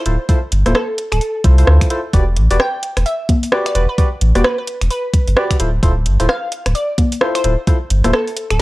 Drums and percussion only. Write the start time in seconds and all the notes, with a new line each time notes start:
0.06 closed hi-hat
0.29 kick, closed hi-hat
0.52 closed hi-hat
0.66 cross-stick, closed hi-hat, high conga
0.75 cross-stick
0.98 closed hi-hat
1.12 finger snap, closed hi-hat
1.21 closed hi-hat
1.44 kick, closed hi-hat
1.58 closed hi-hat
1.67 cross-stick
1.81 finger snap, kick, closed hi-hat
1.90 closed hi-hat
2.13 kick, closed hi-hat
2.37 closed hi-hat
2.51 closed hi-hat
2.60 cross-stick
2.83 closed hi-hat
2.97 finger snap, cross-stick, closed hi-hat
3.06 closed hi-hat
3.29 kick, closed hi-hat, high conga
3.43 closed hi-hat
3.52 cross-stick
3.66 finger snap, closed hi-hat
3.75 closed hi-hat
3.98 kick, closed hi-hat
4.21 closed hi-hat
4.35 cross-stick, closed hi-hat, high conga
4.44 cross-stick
4.67 closed hi-hat
4.81 finger snap, closed hi-hat
4.90 closed hi-hat
5.14 kick, closed hi-hat
5.28 closed hi-hat
5.37 cross-stick
5.51 finger snap, kick, closed hi-hat
5.60 closed hi-hat
5.83 kick, closed hi-hat
6.06 closed hi-hat
6.20 closed hi-hat
6.29 cross-stick
6.52 closed hi-hat
6.66 finger snap, cross-stick, closed hi-hat
6.75 closed hi-hat
6.98 kick, closed hi-hat, high conga
7.12 closed hi-hat
7.21 cross-stick
7.35 finger snap, closed hi-hat
7.44 closed hi-hat
7.67 kick, closed hi-hat
7.90 closed hi-hat
8.04 cross-stick, closed hi-hat, high conga
8.13 cross-stick
8.27 closed hi-hat
8.37 closed hi-hat
8.51 finger snap, closed hi-hat